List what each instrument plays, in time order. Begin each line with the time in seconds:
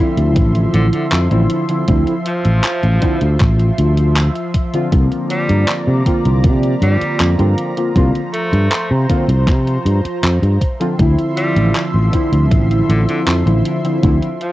Already playing: synth keys D3 F3, analog synth pad F3 E5 C6
0.00 synth keys C4 E4
0.17 fretless electric bass D2, closed hi-hat
0.36 fretless electric bass A1, kick, closed hi-hat
0.55 closed hi-hat
0.74 fretless electric bass A1, tenor saxophone D3, closed hi-hat
0.93 tenor saxophone D3, closed hi-hat
1.12 fretless electric bass F2, clap, closed hi-hat
1.30 fretless electric bass A1, synth keys D3 F3 C4 E4, closed hi-hat
1.50 closed hi-hat
1.69 synth keys D3 F3 C4 E4, closed hi-hat
1.87 fretless electric bass D2, synth keys D3 F3 C4 E4, kick, closed hi-hat
2.07 closed hi-hat
2.26 tenor saxophone F3, closed hi-hat
2.45 fretless electric bass A1, closed hi-hat
2.64 clap, closed hi-hat
2.83 fretless electric bass A1, closed hi-hat
3.01 synth keys D3 F3 C4 E4, kick, closed hi-hat
3.21 fretless electric bass D2, closed hi-hat
3.40 fretless electric bass A1, kick, clap, closed hi-hat
3.60 closed hi-hat
3.78 fretless electric bass D2, closed hi-hat
3.97 closed hi-hat
4.16 clap, closed hi-hat
4.35 closed hi-hat
4.54 kick, closed hi-hat
4.73 synth keys D3 F3 C4 F4, closed hi-hat
4.91 fretless electric bass C2, synth keys D3 A#3 C4 F4, analog synth pad D5 A#5, kick, closed hi-hat
5.12 closed hi-hat
5.30 tenor saxophone G3, closed hi-hat
5.49 fretless electric bass G2, closed hi-hat
5.68 clap, closed hi-hat
5.87 fretless electric bass C3
6.04 synth keys D3 A#3 C4 F4, kick, closed hi-hat
6.25 fretless electric bass C2, closed hi-hat
6.44 fretless electric bass C3, kick, closed hi-hat
6.63 closed hi-hat
6.82 fretless electric bass G2, tenor saxophone G3, closed hi-hat
7.01 muted fretless electric bass stroke, closed hi-hat
7.20 fretless electric bass F2, clap, closed hi-hat
7.38 fretless electric bass G2, synth keys D3 A#3 C4 F4, closed hi-hat
7.58 closed hi-hat
7.77 synth keys D3 A#3 C4 F4, closed hi-hat
7.95 fretless electric bass C2, synth keys D3 A#3 C4 F4, analog synth pad C5, kick, closed hi-hat
8.15 closed hi-hat
8.34 tenor saxophone A3, closed hi-hat
8.53 fretless electric bass G2, closed hi-hat
8.72 clap, closed hi-hat
8.91 fretless electric bass C3
9.09 synth keys D3 A#3 C4 F4, kick, closed hi-hat
9.28 fretless electric bass C2, closed hi-hat
9.47 fretless electric bass C3, kick, clap, closed hi-hat
9.67 closed hi-hat
9.85 fretless electric bass G2, closed hi-hat
10.05 muted fretless electric bass stroke, closed hi-hat
10.23 fretless electric bass F2, clap, closed hi-hat
10.42 fretless electric bass G2, closed hi-hat
10.61 analog synth pad F3 E5 C6, kick, closed hi-hat
10.80 synth keys D3 F3 C4 F4, closed hi-hat
10.98 fretless electric bass D2, synth keys D3 F3 C4 E4, kick, closed hi-hat
11.19 closed hi-hat
11.37 tenor saxophone G3, closed hi-hat
11.56 fretless electric bass A1, closed hi-hat
11.75 clap, closed hi-hat
11.94 fretless electric bass A1
12.12 synth keys D3 F3 C4 E4, kick, closed hi-hat
12.32 fretless electric bass D2, closed hi-hat
12.51 fretless electric bass A1, kick, closed hi-hat
12.71 closed hi-hat
12.89 fretless electric bass A1, tenor saxophone D3, closed hi-hat
13.09 tenor saxophone D3, closed hi-hat
13.27 fretless electric bass F2, clap, closed hi-hat
13.45 fretless electric bass A1, synth keys D3 F3 C4 E4, closed hi-hat
13.65 closed hi-hat
13.84 synth keys D3 F3 C4 E4, closed hi-hat
14.02 fretless electric bass D2, synth keys D3 F3 C4 E4, kick, closed hi-hat
14.22 closed hi-hat
14.41 tenor saxophone F3, closed hi-hat